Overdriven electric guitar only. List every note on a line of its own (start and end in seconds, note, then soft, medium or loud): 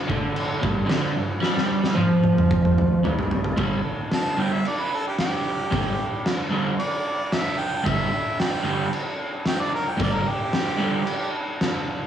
0.08 0.61 D3 loud
0.61 0.88 G2 loud
0.86 1.14 D3 loud
1.16 1.37 G2 medium
1.41 1.95 G3 loud
1.95 3.02 F3 loud
3.04 3.56 G2 loud
3.57 3.78 G2 loud
3.57 3.79 D3 loud
3.57 3.79 G3 loud
4.37 4.59 G2 loud
4.37 4.59 D3 medium
4.37 4.60 G3 loud
5.71 5.93 G2 medium
5.71 5.93 D3 medium
5.71 5.94 G3 loud
6.50 6.73 G2 medium
6.50 6.74 D3 loud
6.50 6.74 G3 loud
7.84 8.06 G2 medium
7.84 8.07 D3 loud
7.84 8.08 G3 loud
8.63 8.86 G2 loud
8.63 8.87 D3 loud
8.63 8.87 G3 loud
9.97 10.20 G2 loud
9.97 10.21 D3 loud
9.97 10.21 G3 loud
10.78 11.01 G2 medium
10.78 11.02 D3 medium
10.78 11.02 G3 loud